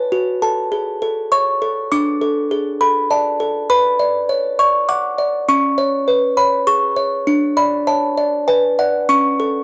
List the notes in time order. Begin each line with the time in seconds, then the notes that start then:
Already playing: B4
0.12 F#4
0.42 A4 A5
0.72 G#4
1.02 A4
1.32 C#5 C#6
1.62 A4
1.92 D4 D6
2.22 A4
2.51 G#4
2.81 A4 B5
3.10 D5 A5
3.40 A4
3.70 B4 B5
3.99 D5
4.29 C#5
4.59 D5 C#6
4.89 F#5 D6
5.18 D5
5.48 C#4 C#6
5.78 C#5
6.08 B4
6.37 C#5 B5
6.67 G#4 C#6
6.96 C#5
7.27 D4
7.57 D5 B5
7.87 C#5 A5
8.18 D5
8.48 B4 G#5
8.79 D5 F#5
9.09 C#4 C#6
9.40 A4